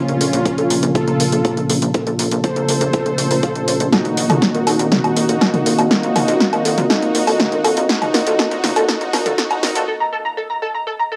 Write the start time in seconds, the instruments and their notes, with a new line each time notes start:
Already playing: synth drone A#2 A#3, analog synth pad C#3 F4 A4, ambient pad A#3 F4 F5, supersaw synth C#4 F4
0.09 analog synth bass A#1, synth arpeggio sound A#4, closed hi-hat
0.21 analog synth bass A#1, synth arpeggio sound A4, open hi-hat
0.33 analog synth bass A#1, synth arpeggio sound A#5, closed hi-hat
0.46 synth arpeggio sound A#4, kick, closed hi-hat
0.58 analog synth bass A#1, synth arpeggio sound A4, closed hi-hat
0.70 analog synth bass A#1, synth arpeggio sound A#5, open hi-hat
0.83 analog synth bass A#1, synth arpeggio sound A#4, closed hi-hat
0.95 supersaw synth F4 A4, synth arpeggio sound A4, kick, closed hi-hat
1.08 analog synth bass A#1, synth arpeggio sound A#5, closed hi-hat
1.20 analog synth bass A#1, synth arpeggio sound A#4, open hi-hat
1.32 analog synth bass A#1, synth arpeggio sound A4, closed hi-hat
1.45 synth arpeggio sound A#5, kick, closed hi-hat
1.57 analog synth bass A#1, synth arpeggio sound A#4, closed hi-hat
1.69 analog synth bass A#1, synth arpeggio sound A4, open hi-hat
1.82 analog synth bass A#1, synth arpeggio sound A#5, closed hi-hat
1.94 synth arpeggio sound A#4, kick, closed hi-hat
2.07 analog synth bass A#1, synth arpeggio sound A4, closed hi-hat
2.19 analog synth bass A#1, synth arpeggio sound A#5, open hi-hat
2.31 analog synth bass A#1, synth arpeggio sound A#4, closed hi-hat
2.44 supersaw synth A4 C5, synth arpeggio sound A4, kick, closed hi-hat
2.56 analog synth bass A#1, synth arpeggio sound A#5, closed hi-hat
2.69 analog synth bass A#1, synth arpeggio sound A#4, open hi-hat
2.81 analog synth bass A#1, synth arpeggio sound A4, closed hi-hat
2.93 synth arpeggio sound A#5, kick, closed hi-hat
3.06 analog synth bass A#1, synth arpeggio sound A#4, closed hi-hat
3.18 analog synth bass A#1, synth arpeggio sound C#6, open hi-hat
3.31 analog synth bass A#1, synth arpeggio sound A#4, open hi-hat
3.43 synth arpeggio sound F5, kick, closed hi-hat
3.55 analog synth bass A#1, closed hi-hat
3.68 analog synth bass A#1, synth arpeggio sound C#5, open hi-hat
3.80 analog synth bass A#1, synth arpeggio sound C5, closed hi-hat
3.93 analog synth pad D#3 A#3 F#4, ambient pad C4, supersaw synth D#4 F#4, synth arpeggio sound A4, kick, snare, closed hi-hat, low woodblock
4.05 analog synth bass A#1, synth arpeggio sound A#5, closed hi-hat
4.17 analog synth bass A#1, synth arpeggio sound A#4, open hi-hat
4.28 analog synth bass A#1, synth arpeggio sound A4, ambient pad F5, closed hi-hat, mid tom, low woodblock
4.41 ambient pad A#4, synth arpeggio sound A#5, kick, snare, closed hi-hat
4.55 analog synth bass A#1, synth arpeggio sound A#4, closed hi-hat
4.61 ambient pad D#5
4.67 analog synth bass A#1, synth arpeggio sound A4, open hi-hat, low woodblock
4.79 analog synth bass A#1, synth arpeggio sound A#5, closed hi-hat
4.92 supersaw synth D#4 F#4, synth arpeggio sound A4, kick, snare, closed hi-hat, mid tom
5.04 analog synth bass A#1, synth arpeggio sound A#5, closed hi-hat, low woodblock
5.17 analog synth bass A#1, synth arpeggio sound A#4, open hi-hat
5.29 analog synth bass A#1, synth arpeggio sound A4, closed hi-hat
5.41 synth arpeggio sound A#5, kick, snare, closed hi-hat, low woodblock
5.54 analog synth bass A#1, synth arpeggio sound A#4, closed hi-hat, mid tom
5.66 analog synth bass A#1, synth arpeggio sound A4, open hi-hat
5.79 analog synth bass A#1, synth arpeggio sound A#5, closed hi-hat, low woodblock
5.91 supersaw synth D#4 F#4, synth arpeggio sound A4, kick, snare, closed hi-hat
6.03 analog synth bass A#1, synth arpeggio sound A#5, closed hi-hat
6.16 analog synth bass A#1, synth arpeggio sound A#4, open hi-hat, mid tom, low woodblock
6.28 analog synth bass A#1, synth arpeggio sound A4, closed hi-hat
6.41 synth arpeggio sound A#5, kick, snare, closed hi-hat
6.53 analog synth bass A#1, synth arpeggio sound A#4, closed hi-hat, low woodblock
6.65 analog synth bass A#1, synth arpeggio sound A4, open hi-hat
6.78 analog synth bass A#1, synth arpeggio sound A#5, closed hi-hat, mid tom
6.90 supersaw synth D#4 F#4, synth arpeggio sound A4, kick, snare, closed hi-hat, low woodblock
7.03 analog synth bass A#1, synth arpeggio sound A#5, closed hi-hat
7.15 analog synth bass A#1, synth arpeggio sound A#4, open hi-hat
7.27 analog synth bass A#1, synth arpeggio sound A4, open hi-hat, low woodblock
7.40 synth arpeggio sound A#5, kick, snare, closed hi-hat, mid tom
7.52 analog synth bass A#1, synth arpeggio sound A#4, closed hi-hat
7.64 analog synth bass A#1, synth arpeggio sound A4, open hi-hat, low woodblock
7.77 analog synth bass A#1, synth arpeggio sound A#5, closed hi-hat
7.89 supersaw synth D#4 F#4, synth arpeggio sound A4, kick, snare, closed hi-hat
8.02 analog synth bass A#1, synth arpeggio sound A#5, closed hi-hat, mid tom, low woodblock
8.14 analog synth bass A#1, synth arpeggio sound A#4, snare, open hi-hat
8.27 analog synth bass A#1, synth arpeggio sound A4, closed hi-hat
8.39 supersaw synth D#4 F#4, synth arpeggio sound A4, kick, snare, closed hi-hat, low woodblock
8.51 analog synth bass A#1, synth arpeggio sound A#5, closed hi-hat
8.64 analog synth bass A#1, synth arpeggio sound A#4, snare, open hi-hat, mid tom
8.76 analog synth bass A#1, synth arpeggio sound A4, closed hi-hat, low woodblock
8.88 supersaw synth D#4 F#4, synth arpeggio sound A4, kick, snare, closed hi-hat
9.01 analog synth bass A#1, synth arpeggio sound A#5, closed hi-hat
9.13 analog synth bass A#1, synth arpeggio sound A#4, snare, open hi-hat, low woodblock
9.26 analog synth bass A#1, synth arpeggio sound A4, closed hi-hat, mid tom
9.38 supersaw synth D#4 F#4, synth arpeggio sound A4, kick, snare, closed hi-hat
9.51 analog synth bass A#1, synth arpeggio sound A#5, closed hi-hat, low woodblock
9.63 analog synth bass A#1, synth arpeggio sound A#4, snare, open hi-hat
9.75 analog synth bass A#1, synth arpeggio sound A4, closed hi-hat
9.88 synth arpeggio sound A4
10.00 synth arpeggio sound A#5
10.13 synth arpeggio sound A4
10.25 synth arpeggio sound A#5
10.37 synth arpeggio sound A4
10.50 synth arpeggio sound A#5
10.62 synth arpeggio sound A4
10.74 synth arpeggio sound A#5
10.87 synth arpeggio sound A4
10.99 synth arpeggio sound A#5
11.12 synth arpeggio sound A4